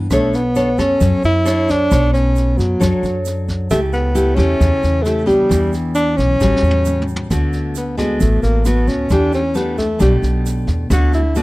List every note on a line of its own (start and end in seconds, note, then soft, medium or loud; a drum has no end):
0.10 0.74 B1 medium
0.10 0.37 A3 medium
0.10 0.99 B3 soft
0.10 0.40 D4 medium
0.10 0.40 A4 medium
0.10 0.41 C#5 medium
0.10 kick medium
0.10 cross-stick medium
0.10 snare soft
0.10 shaker medium
0.34 0.81 B3 medium
0.34 snare soft
0.34 shaker soft
0.55 0.69 D4 medium
0.55 0.69 A4 soft
0.55 0.69 C#5 medium
0.55 snare soft
0.55 shaker medium
0.78 0.99 F#2 medium
0.78 1.24 C#4 loud
0.78 1.42 A4 medium
0.78 1.42 C#5 medium
0.78 kick soft
0.78 cross-stick medium
0.78 snare soft
0.78 shaker soft
1.00 1.11 F#2 medium
1.00 1.88 F#3 soft
1.00 kick medium
1.00 snare soft
1.00 shaker medium
1.23 1.87 F#2 medium
1.23 1.72 E4 loud
1.23 snare soft
1.23 shaker soft
1.45 1.87 D4 medium
1.45 1.87 A4 medium
1.45 1.87 C#5 medium
1.45 cross-stick medium
1.45 snare soft
1.45 shaker medium
1.68 2.13 D4 loud
1.68 kick soft
1.68 snare soft
1.68 shaker soft
1.91 2.54 B1 loud
1.91 2.79 B3 soft
1.91 2.51 A4 medium
1.91 2.52 C#5 medium
1.91 kick medium
1.91 cross-stick medium
1.91 snare soft
1.91 shaker medium
2.13 2.59 C#4 medium
2.13 snare soft
2.13 shaker soft
2.36 snare soft
2.36 shaker medium
2.58 2.79 F#2 medium
2.58 3.25 F#3 medium
2.58 kick soft
2.58 snare soft
2.58 shaker soft
2.80 2.91 F#2 medium
2.80 3.68 F#3 medium
2.80 3.67 D4 soft
2.80 3.67 A4 soft
2.80 3.67 C#5 medium
2.80 kick medium
2.80 cross-stick medium
2.80 snare soft
2.80 shaker medium
3.03 3.66 F#2 medium
3.03 snare soft
3.03 shaker soft
3.25 snare soft
3.25 shaker medium
3.48 kick soft
3.48 snare soft
3.48 shaker soft
3.70 4.34 C#2 medium
3.70 4.58 C#3 soft
3.70 4.12 A3 soft
3.70 3.81 A3 medium
3.70 4.12 E4 soft
3.70 4.12 G4 medium
3.70 kick medium
3.70 cross-stick medium
3.70 snare soft
3.70 shaker medium
3.93 4.37 B3 medium
3.93 snare soft
3.93 shaker soft
4.15 4.34 A3 medium
4.15 4.34 E4 medium
4.15 4.34 G4 medium
4.15 snare soft
4.15 shaker medium
4.35 4.59 E2 medium
4.35 5.01 A3 medium
4.35 5.04 C#4 loud
4.35 5.01 E4 medium
4.35 5.01 G4 medium
4.35 kick soft
4.35 cross-stick medium
4.35 snare soft
4.35 shaker soft
4.60 4.71 E2 medium
4.60 5.48 C#3 medium
4.60 kick soft
4.60 snare soft
4.60 shaker medium
4.83 5.47 E2 medium
4.83 snare soft
4.83 shaker soft
5.03 5.29 A3 medium
5.03 5.24 A3 medium
5.03 5.25 E4 medium
5.03 5.25 G4 medium
5.03 cross-stick medium
5.03 snare soft
5.03 shaker medium
5.26 5.72 G3 medium
5.26 6.13 B3 soft
5.26 6.14 D4 medium
5.26 6.14 G4 medium
5.26 kick soft
5.26 snare soft
5.26 shaker soft
5.49 6.14 E2 loud
5.49 6.38 E3 medium
5.49 kick medium
5.49 cross-stick medium
5.49 snare soft
5.49 shaker medium
5.73 snare soft
5.73 shaker soft
5.95 6.18 D4 loud
5.95 snare soft
5.95 shaker medium
6.16 6.39 B1 medium
6.16 7.07 C#4 loud
6.16 kick soft
6.16 snare soft
6.16 shaker soft
6.40 6.51 A1 medium
6.40 7.28 A2 soft
6.40 7.27 G3 soft
6.40 7.27 C#4 soft
6.40 7.27 F#4 soft
6.40 kick medium
6.40 snare soft
6.40 shaker medium
6.56 snare soft
6.62 7.26 E2 medium
6.62 shaker soft
6.71 high tom medium
6.85 mid tom soft
6.85 shaker medium
7.01 mid tom medium
7.08 shaker soft
7.16 floor tom medium
7.30 8.16 D2 medium
7.30 8.18 D3 soft
7.30 7.75 A3 soft
7.30 7.75 B3 medium
7.30 7.75 F#4 medium
7.30 kick medium
7.30 cross-stick medium
7.30 snare soft
7.30 shaker medium
7.53 snare soft
7.53 shaker soft
7.75 7.97 B3 medium
7.75 snare soft
7.75 shaker medium
7.98 8.22 G#3 medium
7.98 8.62 A3 medium
7.98 8.62 B3 medium
7.98 8.62 F#4 medium
7.98 kick soft
7.98 cross-stick medium
7.98 snare soft
7.98 shaker soft
8.20 8.41 A1 medium
8.20 9.08 A2 soft
8.20 8.42 A3 medium
8.20 kick medium
8.20 snare soft
8.20 shaker medium
8.43 8.85 A1 medium
8.43 8.67 A#3 medium
8.43 snare soft
8.43 shaker soft
8.65 9.07 A3 soft
8.65 8.90 B3 medium
8.65 9.07 B3 soft
8.65 9.07 F#4 medium
8.65 cross-stick medium
8.65 snare soft
8.65 shaker medium
8.87 9.09 D2 medium
8.87 9.13 C#4 medium
8.87 kick soft
8.87 snare soft
8.87 shaker soft
9.09 9.96 E2 medium
9.09 9.99 E3 soft
9.09 9.40 A3 soft
9.09 9.33 D4 medium
9.09 9.40 D4 soft
9.09 9.40 G4 medium
9.09 kick medium
9.09 cross-stick medium
9.09 snare soft
9.09 shaker medium
9.33 9.58 C#4 medium
9.33 snare soft
9.33 shaker soft
9.55 9.84 A3 medium
9.55 9.78 B3 medium
9.55 9.84 D4 medium
9.55 9.84 G4 medium
9.55 snare soft
9.55 shaker medium
9.78 9.99 A3 medium
9.78 kick soft
9.78 snare soft
9.78 shaker soft
9.99 10.21 B1 medium
9.99 10.88 B2 medium
9.99 10.15 G3 medium
9.99 10.87 A3 soft
9.99 10.86 D4 soft
9.99 10.87 G4 medium
9.99 kick medium
9.99 cross-stick soft
9.99 snare soft
9.99 shaker medium
10.22 10.64 B1 medium
10.22 snare soft
10.22 shaker soft
10.46 snare soft
10.46 shaker medium
10.67 10.89 E2 medium
10.67 kick soft
10.67 snare soft
10.67 shaker soft
10.90 11.43 D2 medium
10.90 11.43 D3 medium
10.90 11.20 A3 medium
10.90 11.20 B3 medium
10.90 11.20 F#4 medium
10.90 11.13 F#4 medium
10.90 kick medium
10.90 cross-stick medium
10.90 snare soft
10.90 shaker medium
11.13 11.39 E4 medium
11.13 snare soft
11.13 shaker soft
11.35 11.43 A3 medium
11.35 11.43 B3 medium
11.35 11.43 D4 medium
11.35 11.43 F#4 medium
11.35 snare soft
11.35 shaker medium